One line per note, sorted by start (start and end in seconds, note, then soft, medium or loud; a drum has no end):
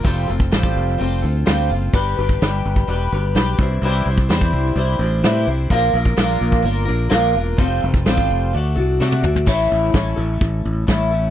0.03 0.27 F1 loud
0.03 0.28 F3 medium
0.03 0.28 G3 medium
0.03 0.28 C4 loud
0.03 0.28 F4 loud
0.03 0.26 A4 loud
0.03 kick loud
0.03 open hi-hat medium
0.27 0.51 F1 loud
0.27 0.52 C4 soft
0.27 0.52 F4 soft
0.27 0.52 A4 medium
0.27 open hi-hat medium
0.40 kick loud
0.51 0.75 A1 medium
0.51 0.99 F3 medium
0.51 0.98 G3 medium
0.51 0.98 C4 medium
0.51 0.99 F4 medium
0.51 1.00 A4 loud
0.51 snare loud
0.51 open hi-hat medium
0.63 kick loud
0.75 0.98 F1 loud
0.75 open hi-hat medium
0.88 snare soft
0.98 1.22 F1 medium
0.98 1.22 G3 medium
0.98 1.23 C4 medium
0.98 1.22 F4 medium
0.98 1.21 A4 medium
0.98 open hi-hat medium
1.22 1.45 D2 medium
1.22 1.45 C4 soft
1.22 1.46 F4 medium
1.22 1.46 A4 medium
1.22 open hi-hat medium
1.46 1.69 D2 medium
1.46 1.70 F3 medium
1.46 1.70 G3 medium
1.46 1.70 C4 medium
1.46 1.69 F4 medium
1.46 1.67 A4 loud
1.46 snare loud
1.46 open hi-hat medium
1.69 1.93 F#1 medium
1.69 1.94 C4 soft
1.69 1.94 F4 medium
1.69 1.93 A4 medium
1.69 open hi-hat medium
1.93 2.15 G1 medium
1.93 2.17 G3 medium
1.93 2.17 D4 medium
1.93 2.17 G4 medium
1.93 2.16 B4 medium
1.93 kick loud
1.93 crash loud
2.17 2.40 G1 medium
2.17 2.41 D4 soft
2.17 2.41 G4 soft
2.17 2.41 B4 medium
2.17 open hi-hat medium
2.29 kick medium
2.41 2.63 G1 medium
2.41 2.87 G3 medium
2.41 2.88 D4 medium
2.41 2.89 G4 medium
2.41 2.89 B4 medium
2.41 snare loud
2.41 open hi-hat medium
2.65 2.87 G1 medium
2.65 open hi-hat medium
2.76 kick medium
2.76 snare soft
2.87 3.10 E1 medium
2.87 3.11 G3 medium
2.87 3.12 D4 medium
2.87 3.12 G4 medium
2.87 3.11 B4 medium
2.87 open hi-hat medium
3.12 3.34 G1 loud
3.12 3.34 D4 soft
3.12 3.35 G4 medium
3.12 3.35 B4 medium
3.12 open hi-hat medium
3.35 3.57 B1 medium
3.35 3.58 G3 medium
3.35 3.59 D4 medium
3.35 3.59 G4 loud
3.35 3.59 B4 medium
3.35 snare loud
3.35 open hi-hat medium
3.59 3.81 C2 medium
3.59 3.83 D4 soft
3.59 3.83 E4 soft
3.59 3.83 C5 medium
3.59 kick loud
3.59 open hi-hat medium
3.63 3.83 G3 soft
3.82 4.04 C2 loud
3.82 4.06 C3 medium
3.82 4.07 E3 medium
3.82 4.07 G3 loud
3.82 4.07 D4 loud
3.82 4.07 E4 loud
3.82 4.06 C5 loud
3.82 open hi-hat medium
4.06 4.28 C2 medium
4.06 4.29 D4 medium
4.06 4.29 E4 medium
4.06 4.30 C5 medium
4.06 open hi-hat medium
4.10 4.28 G3 medium
4.18 kick medium
4.29 4.51 E2 medium
4.29 4.76 C3 medium
4.29 4.76 E3 medium
4.29 4.75 G3 medium
4.29 4.77 D4 loud
4.29 4.77 E4 medium
4.29 4.77 C5 medium
4.29 snare loud
4.29 open hi-hat medium
4.41 kick medium
4.53 4.75 C2 loud
4.53 open hi-hat medium
4.66 snare soft
4.76 4.98 C2 loud
4.76 5.00 G3 medium
4.76 5.00 D4 medium
4.76 5.00 E4 medium
4.76 4.98 C5 medium
4.76 open hi-hat medium
4.99 5.21 A1 medium
4.99 5.24 D4 soft
4.99 5.24 E4 medium
4.99 5.23 C5 medium
4.99 open hi-hat medium
5.03 5.23 G3 soft
5.23 5.45 A2 loud
5.23 5.47 C3 medium
5.23 5.47 E3 medium
5.23 5.47 G3 medium
5.23 5.48 D4 medium
5.23 5.48 E4 loud
5.23 5.46 C5 medium
5.23 snare loud
5.23 open hi-hat medium
5.47 5.69 C2 medium
5.47 5.72 G3 soft
5.47 5.71 D4 soft
5.47 5.71 E4 medium
5.47 5.71 C5 medium
5.47 open hi-hat medium
5.70 5.93 A#1 loud
5.70 5.94 A#2 medium
5.70 5.94 F3 loud
5.70 5.95 A#3 medium
5.70 5.95 D4 medium
5.70 5.94 F4 medium
5.70 5.93 A#4 loud
5.70 kick loud
5.70 open hi-hat medium
5.94 6.16 A#1 loud
5.94 6.16 A#3 medium
5.94 6.17 D4 soft
5.94 6.17 F4 medium
5.94 6.17 A#4 medium
5.94 open hi-hat medium
6.05 kick medium
6.17 6.40 A#1 loud
6.17 6.64 A#2 medium
6.17 6.64 F3 medium
6.17 6.61 A#3 loud
6.17 6.63 D4 loud
6.17 6.64 F4 loud
6.17 6.64 A#4 medium
6.17 snare loud
6.17 open hi-hat medium
6.41 6.63 A#1 medium
6.41 open hi-hat medium
6.52 kick medium
6.62 6.86 G1 medium
6.62 6.87 A#3 medium
6.62 6.86 D4 medium
6.62 6.85 F4 medium
6.62 6.84 A#4 medium
6.62 open hi-hat medium
6.85 7.11 A#1 loud
6.85 7.08 A#3 soft
6.85 7.10 D4 medium
6.85 7.09 F4 medium
6.85 7.09 A#4 medium
6.85 open hi-hat medium
7.09 7.34 A#1 medium
7.09 7.34 A#2 medium
7.09 7.34 F3 medium
7.09 7.34 A#3 loud
7.09 7.35 D4 medium
7.09 7.33 F4 medium
7.09 7.32 A#4 loud
7.09 snare loud
7.09 open hi-hat medium
7.33 7.58 E1 medium
7.33 7.58 A#3 soft
7.33 7.59 D4 soft
7.33 7.58 F4 medium
7.33 7.58 A#4 medium
7.33 open hi-hat medium
7.57 7.81 F1 medium
7.57 7.81 F3 medium
7.57 7.82 G3 medium
7.57 7.83 C4 loud
7.57 7.83 F4 loud
7.57 7.81 A4 loud
7.57 kick loud
7.57 open hi-hat medium
7.82 8.05 F1 loud
7.82 8.06 C4 soft
7.82 8.06 F4 soft
7.82 8.06 A4 medium
7.82 open hi-hat medium
7.94 kick loud
8.05 8.28 A1 medium
8.05 8.53 F3 medium
8.05 8.52 G3 medium
8.05 8.53 C4 loud
8.05 8.54 F4 medium
8.05 8.54 A4 loud
8.05 snare loud
8.05 open hi-hat medium
8.17 kick medium
8.30 8.52 F1 loud
8.30 open hi-hat medium
8.53 8.76 D2 medium
8.53 8.77 A3 medium
8.53 8.77 D4 medium
8.53 8.76 F#4 medium
8.53 open hi-hat medium
8.57 8.74 A4 medium
8.76 8.99 C2 medium
8.76 9.00 D4 soft
8.76 9.00 F#4 medium
8.76 9.00 A4 medium
8.76 open hi-hat medium
9.00 9.22 C3 medium
9.00 9.24 D3 medium
9.00 9.24 A3 loud
9.00 9.24 D4 medium
9.00 9.23 F#4 medium
9.00 9.21 A4 loud
9.00 snare medium
9.12 high tom medium
9.22 9.45 D2 medium
9.22 9.47 D4 medium
9.22 9.48 F#4 medium
9.22 9.47 A4 medium
9.22 mid tom medium
9.36 floor tom loud
9.46 9.68 A1 loud
9.46 9.94 A2 medium
9.46 9.94 E3 medium
9.46 9.93 A3 medium
9.46 9.93 C#4 medium
9.46 9.94 E4 medium
9.46 9.96 A4 loud
9.46 kick loud
9.46 crash loud
9.71 9.92 A1 medium
9.71 closed hi-hat medium
9.93 10.15 A1 medium
9.93 10.17 A3 medium
9.93 10.18 C#4 medium
9.93 10.16 E4 medium
9.93 10.15 A4 medium
9.93 kick loud
9.93 snare loud
9.93 closed hi-hat medium
10.16 10.39 A1 medium
10.16 10.87 C#4 soft
10.16 10.89 E4 medium
10.16 10.91 A4 medium
10.16 closed hi-hat medium
10.20 10.86 A3 soft
10.41 10.62 A1 medium
10.41 kick loud
10.41 closed hi-hat medium
10.65 10.86 A1 medium
10.65 closed hi-hat medium
10.87 11.30 A1 medium
10.87 11.11 A3 medium
10.87 11.12 C#4 medium
10.87 11.11 E4 medium
10.87 kick loud
10.87 snare loud
10.87 closed hi-hat loud
10.91 11.10 A4 medium
11.11 11.30 A3 soft
11.11 11.30 C#4 soft
11.11 11.30 E4 soft
11.11 11.30 A4 medium
11.11 closed hi-hat medium